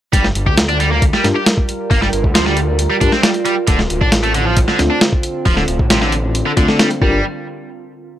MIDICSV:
0, 0, Header, 1, 6, 480
1, 0, Start_track
1, 0, Key_signature, -2, "minor"
1, 0, Tempo, 444444
1, 139, Time_signature, 4, 2, 24, 8
1, 8847, End_track
2, 0, Start_track
2, 0, Title_t, "Tine electric piano"
2, 0, Program_c, 0, 4
2, 1338, Note_on_c, 0, 67, 84
2, 1338, Note_on_c, 0, 70, 101
2, 1339, Note_on_c, 0, 62, 95
2, 1339, Note_on_c, 0, 65, 86
2, 1471, Note_off_c, 0, 67, 0
2, 1471, Note_off_c, 0, 70, 0
2, 1472, Note_off_c, 0, 62, 0
2, 1472, Note_off_c, 0, 65, 0
2, 3256, Note_on_c, 0, 67, 89
2, 3256, Note_on_c, 0, 70, 106
2, 3257, Note_on_c, 0, 62, 97
2, 3257, Note_on_c, 0, 65, 90
2, 3390, Note_off_c, 0, 67, 0
2, 3390, Note_off_c, 0, 70, 0
2, 3391, Note_off_c, 0, 62, 0
2, 3391, Note_off_c, 0, 65, 0
2, 5173, Note_on_c, 0, 60, 91
2, 5174, Note_on_c, 0, 62, 88
2, 5174, Note_on_c, 0, 65, 102
2, 5176, Note_on_c, 0, 57, 98
2, 5309, Note_off_c, 0, 60, 0
2, 5309, Note_off_c, 0, 62, 0
2, 5309, Note_off_c, 0, 65, 0
2, 5310, Note_off_c, 0, 57, 0
2, 7096, Note_on_c, 0, 57, 97
2, 7096, Note_on_c, 0, 62, 88
2, 7096, Note_on_c, 0, 65, 105
2, 7098, Note_on_c, 0, 60, 89
2, 7200, Note_off_c, 0, 57, 0
2, 7200, Note_off_c, 0, 62, 0
2, 7200, Note_off_c, 0, 65, 0
2, 7201, Note_off_c, 0, 60, 0
2, 7218, Note_on_c, 0, 60, 77
2, 7219, Note_on_c, 0, 57, 82
2, 7220, Note_on_c, 0, 69, 90
2, 7221, Note_on_c, 0, 62, 71
2, 7430, Note_off_c, 0, 60, 0
2, 7431, Note_off_c, 0, 57, 0
2, 7431, Note_off_c, 0, 69, 0
2, 7432, Note_off_c, 0, 62, 0
2, 7577, Note_on_c, 0, 62, 88
2, 7577, Note_on_c, 0, 65, 81
2, 7577, Note_on_c, 0, 67, 80
2, 7578, Note_on_c, 0, 70, 98
2, 7757, Note_off_c, 0, 62, 0
2, 7757, Note_off_c, 0, 65, 0
2, 7757, Note_off_c, 0, 67, 0
2, 7758, Note_off_c, 0, 70, 0
2, 8847, End_track
3, 0, Start_track
3, 0, Title_t, "Ambient pad"
3, 0, Program_c, 1, 92
3, 148, Note_on_c, 1, 65, 72
3, 149, Note_on_c, 1, 70, 91
3, 151, Note_on_c, 1, 55, 83
3, 3946, Note_off_c, 1, 70, 0
3, 3947, Note_off_c, 1, 55, 0
3, 3979, Note_on_c, 1, 50, 82
3, 3980, Note_on_c, 1, 60, 78
3, 7541, Note_off_c, 1, 65, 0
3, 7543, Note_off_c, 1, 50, 0
3, 7544, Note_off_c, 1, 60, 0
3, 8847, End_track
4, 0, Start_track
4, 0, Title_t, "Distorted electric guitar"
4, 0, Program_c, 2, 30
4, 144, Note_on_c, 2, 55, 84
4, 256, Note_off_c, 2, 55, 0
4, 507, Note_on_c, 2, 67, 77
4, 586, Note_off_c, 2, 67, 0
4, 744, Note_on_c, 2, 62, 74
4, 824, Note_off_c, 2, 62, 0
4, 864, Note_on_c, 2, 55, 77
4, 970, Note_off_c, 2, 55, 0
4, 984, Note_on_c, 2, 58, 75
4, 1096, Note_off_c, 2, 58, 0
4, 1228, Note_on_c, 2, 55, 78
4, 1338, Note_off_c, 2, 55, 0
4, 1464, Note_on_c, 2, 67, 76
4, 1544, Note_off_c, 2, 67, 0
4, 2058, Note_on_c, 2, 58, 86
4, 2173, Note_off_c, 2, 58, 0
4, 2179, Note_on_c, 2, 55, 78
4, 2229, Note_off_c, 2, 55, 0
4, 2537, Note_on_c, 2, 53, 84
4, 2621, Note_off_c, 2, 53, 0
4, 2657, Note_on_c, 2, 55, 96
4, 2772, Note_off_c, 2, 55, 0
4, 3134, Note_on_c, 2, 55, 79
4, 3186, Note_off_c, 2, 55, 0
4, 3252, Note_on_c, 2, 62, 77
4, 3364, Note_off_c, 2, 62, 0
4, 3373, Note_on_c, 2, 60, 96
4, 3459, Note_off_c, 2, 60, 0
4, 3494, Note_on_c, 2, 55, 88
4, 3546, Note_off_c, 2, 55, 0
4, 3737, Note_on_c, 2, 55, 78
4, 3821, Note_off_c, 2, 55, 0
4, 3976, Note_on_c, 2, 50, 86
4, 4092, Note_off_c, 2, 50, 0
4, 4339, Note_on_c, 2, 62, 77
4, 4422, Note_off_c, 2, 62, 0
4, 4576, Note_on_c, 2, 57, 77
4, 4660, Note_off_c, 2, 57, 0
4, 4695, Note_on_c, 2, 50, 80
4, 4806, Note_off_c, 2, 50, 0
4, 4820, Note_on_c, 2, 53, 78
4, 4934, Note_off_c, 2, 53, 0
4, 5058, Note_on_c, 2, 50, 80
4, 5173, Note_off_c, 2, 50, 0
4, 5296, Note_on_c, 2, 62, 77
4, 5380, Note_off_c, 2, 62, 0
4, 5895, Note_on_c, 2, 53, 87
4, 6011, Note_off_c, 2, 53, 0
4, 6015, Note_on_c, 2, 50, 76
4, 6067, Note_off_c, 2, 50, 0
4, 6378, Note_on_c, 2, 48, 80
4, 6462, Note_off_c, 2, 48, 0
4, 6497, Note_on_c, 2, 50, 105
4, 6612, Note_off_c, 2, 50, 0
4, 6979, Note_on_c, 2, 50, 81
4, 7029, Note_off_c, 2, 50, 0
4, 7100, Note_on_c, 2, 50, 77
4, 7208, Note_off_c, 2, 50, 0
4, 7223, Note_on_c, 2, 50, 76
4, 7304, Note_off_c, 2, 50, 0
4, 7339, Note_on_c, 2, 55, 90
4, 7422, Note_off_c, 2, 55, 0
4, 7583, Note_on_c, 2, 55, 97
4, 7805, Note_off_c, 2, 55, 0
4, 8847, End_track
5, 0, Start_track
5, 0, Title_t, "Detuned saw bass"
5, 0, Program_c, 3, 39
5, 141, Note_on_c, 3, 31, 101
5, 336, Note_off_c, 3, 31, 0
5, 384, Note_on_c, 3, 31, 88
5, 503, Note_on_c, 3, 38, 83
5, 519, Note_off_c, 3, 31, 0
5, 1185, Note_off_c, 3, 38, 0
5, 1340, Note_on_c, 3, 43, 83
5, 1438, Note_off_c, 3, 43, 0
5, 2059, Note_on_c, 3, 31, 99
5, 2255, Note_off_c, 3, 31, 0
5, 2301, Note_on_c, 3, 31, 89
5, 2418, Note_on_c, 3, 38, 86
5, 2434, Note_off_c, 3, 31, 0
5, 3103, Note_off_c, 3, 38, 0
5, 3257, Note_on_c, 3, 43, 85
5, 3356, Note_off_c, 3, 43, 0
5, 3975, Note_on_c, 3, 26, 105
5, 4172, Note_off_c, 3, 26, 0
5, 4219, Note_on_c, 3, 26, 92
5, 4336, Note_on_c, 3, 33, 86
5, 4352, Note_off_c, 3, 26, 0
5, 5022, Note_off_c, 3, 33, 0
5, 5182, Note_on_c, 3, 38, 88
5, 5279, Note_off_c, 3, 38, 0
5, 5895, Note_on_c, 3, 26, 103
5, 6092, Note_off_c, 3, 26, 0
5, 6139, Note_on_c, 3, 26, 89
5, 6256, Note_on_c, 3, 33, 89
5, 6273, Note_off_c, 3, 26, 0
5, 6942, Note_off_c, 3, 33, 0
5, 7099, Note_on_c, 3, 38, 86
5, 7197, Note_off_c, 3, 38, 0
5, 7577, Note_on_c, 3, 31, 102
5, 7801, Note_off_c, 3, 31, 0
5, 8847, End_track
6, 0, Start_track
6, 0, Title_t, "Drums"
6, 143, Note_on_c, 9, 36, 111
6, 144, Note_on_c, 9, 42, 89
6, 251, Note_off_c, 9, 36, 0
6, 252, Note_off_c, 9, 42, 0
6, 263, Note_on_c, 9, 38, 51
6, 371, Note_off_c, 9, 38, 0
6, 382, Note_on_c, 9, 42, 69
6, 490, Note_off_c, 9, 42, 0
6, 503, Note_on_c, 9, 36, 94
6, 611, Note_off_c, 9, 36, 0
6, 621, Note_on_c, 9, 38, 121
6, 621, Note_on_c, 9, 42, 88
6, 729, Note_off_c, 9, 38, 0
6, 729, Note_off_c, 9, 42, 0
6, 743, Note_on_c, 9, 42, 42
6, 851, Note_off_c, 9, 42, 0
6, 865, Note_on_c, 9, 42, 68
6, 973, Note_off_c, 9, 42, 0
6, 1103, Note_on_c, 9, 36, 108
6, 1103, Note_on_c, 9, 42, 84
6, 1211, Note_off_c, 9, 36, 0
6, 1211, Note_off_c, 9, 42, 0
6, 1224, Note_on_c, 9, 38, 51
6, 1332, Note_off_c, 9, 38, 0
6, 1344, Note_on_c, 9, 38, 53
6, 1344, Note_on_c, 9, 42, 74
6, 1452, Note_off_c, 9, 38, 0
6, 1452, Note_off_c, 9, 42, 0
6, 1581, Note_on_c, 9, 38, 117
6, 1581, Note_on_c, 9, 42, 88
6, 1689, Note_off_c, 9, 38, 0
6, 1689, Note_off_c, 9, 42, 0
6, 1702, Note_on_c, 9, 36, 97
6, 1810, Note_off_c, 9, 36, 0
6, 1823, Note_on_c, 9, 42, 70
6, 1931, Note_off_c, 9, 42, 0
6, 2061, Note_on_c, 9, 46, 84
6, 2062, Note_on_c, 9, 36, 117
6, 2169, Note_off_c, 9, 46, 0
6, 2170, Note_off_c, 9, 36, 0
6, 2183, Note_on_c, 9, 38, 44
6, 2291, Note_off_c, 9, 38, 0
6, 2300, Note_on_c, 9, 42, 69
6, 2408, Note_off_c, 9, 42, 0
6, 2420, Note_on_c, 9, 36, 93
6, 2528, Note_off_c, 9, 36, 0
6, 2539, Note_on_c, 9, 38, 116
6, 2539, Note_on_c, 9, 42, 88
6, 2647, Note_off_c, 9, 38, 0
6, 2647, Note_off_c, 9, 42, 0
6, 2659, Note_on_c, 9, 38, 50
6, 2767, Note_off_c, 9, 38, 0
6, 2772, Note_on_c, 9, 42, 69
6, 2880, Note_off_c, 9, 42, 0
6, 3011, Note_on_c, 9, 42, 88
6, 3119, Note_off_c, 9, 42, 0
6, 3254, Note_on_c, 9, 42, 70
6, 3256, Note_on_c, 9, 36, 100
6, 3362, Note_off_c, 9, 42, 0
6, 3364, Note_off_c, 9, 36, 0
6, 3373, Note_on_c, 9, 38, 54
6, 3481, Note_off_c, 9, 38, 0
6, 3493, Note_on_c, 9, 38, 113
6, 3493, Note_on_c, 9, 42, 88
6, 3601, Note_off_c, 9, 38, 0
6, 3601, Note_off_c, 9, 42, 0
6, 3611, Note_on_c, 9, 42, 46
6, 3719, Note_off_c, 9, 42, 0
6, 3731, Note_on_c, 9, 42, 69
6, 3839, Note_off_c, 9, 42, 0
6, 3968, Note_on_c, 9, 42, 91
6, 3975, Note_on_c, 9, 36, 117
6, 4076, Note_off_c, 9, 42, 0
6, 4083, Note_off_c, 9, 36, 0
6, 4094, Note_on_c, 9, 38, 51
6, 4202, Note_off_c, 9, 38, 0
6, 4214, Note_on_c, 9, 42, 72
6, 4322, Note_off_c, 9, 42, 0
6, 4336, Note_on_c, 9, 36, 95
6, 4444, Note_off_c, 9, 36, 0
6, 4449, Note_on_c, 9, 38, 118
6, 4449, Note_on_c, 9, 42, 91
6, 4557, Note_off_c, 9, 38, 0
6, 4557, Note_off_c, 9, 42, 0
6, 4574, Note_on_c, 9, 42, 46
6, 4682, Note_off_c, 9, 42, 0
6, 4692, Note_on_c, 9, 42, 71
6, 4800, Note_off_c, 9, 42, 0
6, 4931, Note_on_c, 9, 42, 90
6, 4936, Note_on_c, 9, 36, 111
6, 5039, Note_off_c, 9, 42, 0
6, 5044, Note_off_c, 9, 36, 0
6, 5053, Note_on_c, 9, 38, 51
6, 5161, Note_off_c, 9, 38, 0
6, 5175, Note_on_c, 9, 38, 54
6, 5175, Note_on_c, 9, 42, 71
6, 5283, Note_off_c, 9, 38, 0
6, 5283, Note_off_c, 9, 42, 0
6, 5414, Note_on_c, 9, 38, 117
6, 5414, Note_on_c, 9, 42, 87
6, 5522, Note_off_c, 9, 38, 0
6, 5522, Note_off_c, 9, 42, 0
6, 5536, Note_on_c, 9, 36, 100
6, 5644, Note_off_c, 9, 36, 0
6, 5652, Note_on_c, 9, 42, 73
6, 5760, Note_off_c, 9, 42, 0
6, 5891, Note_on_c, 9, 46, 83
6, 5896, Note_on_c, 9, 36, 114
6, 5999, Note_off_c, 9, 46, 0
6, 6004, Note_off_c, 9, 36, 0
6, 6015, Note_on_c, 9, 38, 45
6, 6123, Note_off_c, 9, 38, 0
6, 6133, Note_on_c, 9, 42, 70
6, 6241, Note_off_c, 9, 42, 0
6, 6258, Note_on_c, 9, 36, 98
6, 6366, Note_off_c, 9, 36, 0
6, 6374, Note_on_c, 9, 38, 116
6, 6374, Note_on_c, 9, 42, 89
6, 6482, Note_off_c, 9, 38, 0
6, 6482, Note_off_c, 9, 42, 0
6, 6496, Note_on_c, 9, 38, 53
6, 6604, Note_off_c, 9, 38, 0
6, 6613, Note_on_c, 9, 42, 72
6, 6721, Note_off_c, 9, 42, 0
6, 6857, Note_on_c, 9, 42, 88
6, 6965, Note_off_c, 9, 42, 0
6, 7096, Note_on_c, 9, 42, 71
6, 7098, Note_on_c, 9, 36, 99
6, 7204, Note_off_c, 9, 42, 0
6, 7206, Note_off_c, 9, 36, 0
6, 7219, Note_on_c, 9, 38, 52
6, 7327, Note_off_c, 9, 38, 0
6, 7338, Note_on_c, 9, 38, 119
6, 7338, Note_on_c, 9, 42, 86
6, 7446, Note_off_c, 9, 38, 0
6, 7446, Note_off_c, 9, 42, 0
6, 7460, Note_on_c, 9, 42, 46
6, 7568, Note_off_c, 9, 42, 0
6, 7578, Note_on_c, 9, 36, 116
6, 7686, Note_off_c, 9, 36, 0
6, 8847, End_track
0, 0, End_of_file